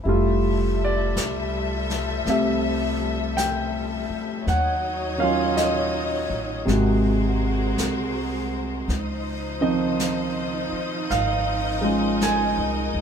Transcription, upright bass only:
0, 0, Header, 1, 3, 480
1, 0, Start_track
1, 0, Key_signature, -5, "major"
1, 0, Tempo, 1104972
1, 20, Time_signature, 4, 2, 24, 8
1, 5652, End_track
2, 0, Start_track
2, 0, Title_t, "Upright bass"
2, 0, Program_c, 0, 32
2, 22, Note_on_c, 0, 29, 60
2, 484, Note_off_c, 0, 29, 0
2, 503, Note_on_c, 0, 36, 62
2, 965, Note_off_c, 0, 36, 0
2, 979, Note_on_c, 0, 36, 63
2, 1761, Note_off_c, 0, 36, 0
2, 1940, Note_on_c, 0, 39, 62
2, 2721, Note_off_c, 0, 39, 0
2, 2736, Note_on_c, 0, 33, 54
2, 2887, Note_off_c, 0, 33, 0
2, 2897, Note_on_c, 0, 32, 67
2, 3361, Note_off_c, 0, 32, 0
2, 3379, Note_on_c, 0, 36, 54
2, 3842, Note_off_c, 0, 36, 0
2, 3858, Note_on_c, 0, 37, 67
2, 4640, Note_off_c, 0, 37, 0
2, 4824, Note_on_c, 0, 32, 65
2, 5446, Note_off_c, 0, 32, 0
2, 5462, Note_on_c, 0, 36, 47
2, 5611, Note_off_c, 0, 36, 0
2, 5621, Note_on_c, 0, 37, 59
2, 5652, Note_off_c, 0, 37, 0
2, 5652, End_track
3, 0, Start_track
3, 0, Title_t, "Muted upright bass strokes"
3, 1779, Note_on_c, 9, 29, 33
3, 1822, Note_off_c, 9, 29, 0
3, 4658, Note_on_c, 9, 29, 31
3, 4702, Note_off_c, 9, 29, 0
3, 5652, End_track
0, 0, End_of_file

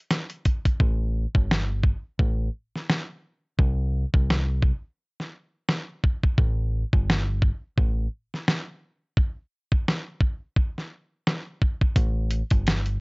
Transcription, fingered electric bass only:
0, 0, Header, 1, 2, 480
1, 0, Start_track
1, 0, Tempo, 697674
1, 550, Time_signature, 4, 2, 24, 8
1, 8945, End_track
2, 0, Start_track
2, 0, Title_t, "Fingered electric bass"
2, 0, Program_c, 0, 33
2, 551, Note_on_c, 0, 33, 101
2, 858, Note_off_c, 0, 33, 0
2, 930, Note_on_c, 0, 31, 83
2, 1319, Note_off_c, 0, 31, 0
2, 1510, Note_on_c, 0, 33, 97
2, 1705, Note_off_c, 0, 33, 0
2, 2471, Note_on_c, 0, 36, 109
2, 2778, Note_off_c, 0, 36, 0
2, 2849, Note_on_c, 0, 36, 90
2, 3239, Note_off_c, 0, 36, 0
2, 4391, Note_on_c, 0, 33, 101
2, 4698, Note_off_c, 0, 33, 0
2, 4770, Note_on_c, 0, 31, 83
2, 5160, Note_off_c, 0, 31, 0
2, 5351, Note_on_c, 0, 33, 99
2, 5546, Note_off_c, 0, 33, 0
2, 8231, Note_on_c, 0, 33, 102
2, 8538, Note_off_c, 0, 33, 0
2, 8609, Note_on_c, 0, 31, 81
2, 8945, Note_off_c, 0, 31, 0
2, 8945, End_track
0, 0, End_of_file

